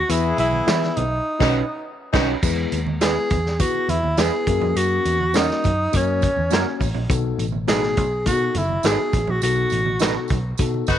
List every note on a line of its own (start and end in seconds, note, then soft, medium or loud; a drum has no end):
0.00 0.12 F#4 loud
0.09 0.31 E2 medium
0.09 0.93 E3 medium
0.09 0.45 B3 medium
0.09 0.96 B3 medium
0.09 0.45 E4 medium
0.09 0.95 E4 medium
0.09 0.39 E4 medium
0.09 0.45 G#4 medium
0.09 0.96 G#4 medium
0.09 0.45 B4 medium
0.09 closed hi-hat medium
0.09 tambourine loud
0.38 0.60 B1 medium
0.38 0.98 E4 medium
0.38 closed hi-hat medium
0.38 tambourine soft
0.53 high conga medium
0.66 0.90 E3 medium
0.66 1.03 B3 medium
0.66 1.03 E4 medium
0.66 0.78 E4 medium
0.66 1.03 G#4 medium
0.66 0.79 G#4 medium
0.66 1.03 B4 medium
0.66 0.79 B4 medium
0.66 snare loud
0.66 closed hi-hat loud
0.66 tambourine medium
0.83 snare soft
0.83 muted conga soft
0.96 1.19 B1 medium
0.96 1.85 D#4 medium
0.96 closed hi-hat medium
0.96 tambourine soft
0.96 high conga medium
0.96 low conga medium
1.39 1.60 B1 loud
1.39 1.60 B2 medium
1.39 1.60 C#4 medium
1.39 1.56 C#4 loud
1.39 1.61 C#4 medium
1.39 1.60 D#4 loud
1.39 1.55 D#4 medium
1.39 1.61 D#4 medium
1.39 1.60 F#4 medium
1.39 1.55 F#4 medium
1.39 1.60 B4 loud
1.39 1.62 B4 medium
1.39 kick loud
1.39 snare loud
1.39 crash medium
2.13 2.34 B1 loud
2.13 2.33 C#4 medium
2.13 2.28 C#4 medium
2.13 2.28 D#4 medium
2.13 2.33 D#4 loud
2.13 2.34 D#4 medium
2.13 2.34 F#4 loud
2.13 2.29 F#4 medium
2.13 2.34 B4 loud
2.13 2.34 B4 medium
2.13 kick loud
2.13 snare loud
2.13 crash medium
2.42 2.65 E2 medium
2.42 3.27 G#3 medium
2.42 2.79 B3 medium
2.42 2.79 E4 medium
2.42 2.79 G#4 medium
2.42 2.79 B4 medium
2.42 kick loud
2.42 crash medium
2.42 tambourine medium
2.42 muted conga soft
2.58 muted conga soft
2.72 3.16 D#2 medium
2.72 closed hi-hat medium
2.72 tambourine medium
2.87 high conga medium
3.01 3.37 B3 medium
3.01 3.12 E4 medium
3.01 3.37 E4 medium
3.01 3.62 G#4 loud
3.01 3.37 G#4 medium
3.01 3.12 G#4 medium
3.01 3.37 B4 medium
3.01 3.13 B4 medium
3.01 snare loud
3.01 closed hi-hat loud
3.01 tambourine medium
3.17 muted conga soft
3.30 3.64 E2 medium
3.30 kick medium
3.30 closed hi-hat medium
3.30 tambourine soft
3.30 high conga soft
3.30 low conga medium
3.46 snare soft
3.59 3.95 B3 medium
3.59 3.95 E4 medium
3.59 3.91 F#4 loud
3.59 3.96 G#4 medium
3.59 3.96 B4 medium
3.59 kick medium
3.59 closed hi-hat medium
3.59 tambourine medium
3.75 muted conga soft
3.89 4.00 E2 loud
3.89 4.18 E4 medium
3.89 closed hi-hat medium
3.89 tambourine medium
3.89 high conga medium
4.03 4.14 D#2 medium
4.03 high conga medium
4.17 4.29 E2 medium
4.17 4.47 B3 medium
4.17 4.47 E4 medium
4.17 4.29 E4 medium
4.17 4.47 G#4 medium
4.17 4.29 G#4 medium
4.17 4.78 G#4 loud
4.17 4.48 B4 medium
4.17 4.30 B4 medium
4.17 snare loud
4.17 closed hi-hat medium
4.17 tambourine medium
4.17 muted conga soft
4.46 4.58 F#2 loud
4.46 5.17 A#3 medium
4.46 5.17 C#4 medium
4.46 5.17 F#4 medium
4.46 5.17 A#4 medium
4.46 kick medium
4.46 closed hi-hat medium
4.46 tambourine medium
4.46 low conga medium
4.61 4.73 F2 medium
4.61 low conga medium
4.76 4.98 F#2 loud
4.76 5.38 F#4 loud
4.76 closed hi-hat loud
4.76 tambourine medium
5.05 5.49 E2 medium
5.05 closed hi-hat medium
5.05 tambourine medium
5.20 high conga medium
5.33 5.70 A#3 medium
5.33 5.70 C#4 medium
5.33 5.45 C#4 medium
5.33 5.98 D#4 medium
5.33 5.70 F#4 medium
5.33 5.46 F#4 medium
5.33 5.70 A#4 medium
5.33 5.46 A#4 medium
5.33 snare loud
5.33 closed hi-hat loud
5.33 tambourine loud
5.49 snare soft
5.49 muted conga soft
5.64 5.87 F#2 medium
5.64 kick medium
5.64 closed hi-hat medium
5.64 tambourine soft
5.64 high conga soft
5.64 low conga medium
5.92 6.27 F#2 loud
5.92 6.28 A#3 medium
5.92 6.28 C#4 medium
5.92 6.29 F#4 medium
5.92 6.29 A#4 medium
5.92 kick medium
5.92 closed hi-hat medium
5.92 tambourine medium
5.96 6.82 C#4 medium
6.21 kick medium
6.21 closed hi-hat medium
6.21 tambourine medium
6.21 high conga medium
6.36 6.48 E2 medium
6.36 high conga medium
6.50 6.63 F#2 medium
6.50 6.87 A#3 medium
6.50 6.87 C#4 medium
6.50 6.62 C#4 medium
6.50 6.87 F#4 medium
6.50 6.62 F#4 medium
6.50 6.63 A#4 medium
6.50 6.87 C#5 medium
6.50 snare loud
6.50 closed hi-hat loud
6.50 tambourine medium
6.65 muted conga soft
6.80 6.92 A1 medium
6.80 kick medium
6.80 open hi-hat soft
6.80 tambourine medium
6.80 low conga medium
6.94 7.06 A#1 medium
6.94 low conga medium
7.09 7.32 B1 loud
7.09 7.93 B2 medium
7.09 7.45 B3 medium
7.09 7.45 D#4 medium
7.09 7.45 F#4 medium
7.09 7.45 A4 loud
7.09 kick loud
7.09 closed hi-hat loud
7.09 tambourine medium
7.38 7.97 A1 medium
7.38 closed hi-hat medium
7.38 tambourine medium
7.52 high conga medium
7.67 8.04 A3 medium
7.67 8.03 B3 medium
7.67 7.79 D#4 medium
7.67 8.04 D#4 medium
7.67 8.04 F#4 medium
7.67 8.23 G#4 loud
7.67 7.79 A4 medium
7.67 7.79 B4 medium
7.67 snare loud
7.67 closed hi-hat loud
7.67 tambourine loud
7.67 muted conga soft
7.83 snare soft
7.97 8.28 B1 medium
7.97 kick medium
7.97 closed hi-hat medium
7.97 tambourine soft
7.97 high conga medium
7.97 low conga medium
8.26 8.48 B2 loud
8.26 8.62 B3 medium
8.26 8.62 D#4 medium
8.26 8.62 F#4 medium
8.26 8.59 F#4 loud
8.26 8.62 A4 medium
8.26 kick medium
8.26 closed hi-hat medium
8.26 tambourine medium
8.54 8.77 F#1 loud
8.54 8.86 E4 medium
8.54 closed hi-hat medium
8.54 tambourine medium
8.54 high conga medium
8.69 high conga medium
8.83 8.95 G#1 medium
8.83 9.20 B3 medium
8.83 8.95 D#4 medium
8.83 9.20 D#4 medium
8.83 9.20 F#4 medium
8.83 9.20 G#4 medium
8.83 9.32 G#4 loud
8.83 8.96 A4 medium
8.83 8.96 B4 medium
8.83 snare loud
8.83 closed hi-hat medium
8.83 tambourine medium
8.99 muted conga soft
9.13 9.25 A1 medium
9.13 kick medium
9.13 closed hi-hat medium
9.13 tambourine medium
9.13 low conga medium
9.27 9.39 A#1 medium
9.27 9.43 F#4 medium
9.27 low conga medium
9.42 9.64 B1 medium
9.42 10.27 B2 medium
9.42 9.78 B3 medium
9.42 9.79 D#4 medium
9.42 9.79 F#4 medium
9.42 10.27 F#4 medium
9.42 9.79 A4 medium
9.42 closed hi-hat loud
9.42 tambourine medium
9.42 muted conga soft
9.57 muted conga soft
9.70 10.16 A1 medium
9.70 closed hi-hat medium
9.70 tambourine soft
9.86 high conga medium
9.99 10.36 B3 medium
9.99 10.11 D#4 medium
9.99 10.36 D#4 medium
9.99 10.36 F#4 medium
9.99 10.12 A4 medium
9.99 10.37 A4 medium
9.99 10.12 B4 loud
9.99 snare loud
9.99 closed hi-hat loud
9.99 tambourine loud
10.16 muted conga soft
10.28 10.52 B1 medium
10.28 kick medium
10.28 closed hi-hat medium
10.28 tambourine soft
10.28 high conga medium
10.28 low conga medium
10.58 10.81 B2 loud
10.58 10.95 B3 medium
10.58 10.95 D#4 medium
10.58 10.95 F#4 medium
10.58 10.95 A4 medium
10.58 kick medium
10.58 closed hi-hat medium
10.58 tambourine medium
10.58 muted conga soft
10.74 muted conga soft
10.87 10.99 F#1 medium
10.87 10.98 B3 medium
10.87 10.97 D#4 medium
10.87 10.97 F#4 loud
10.87 kick medium
10.87 closed hi-hat medium
10.87 tambourine medium
10.87 high conga medium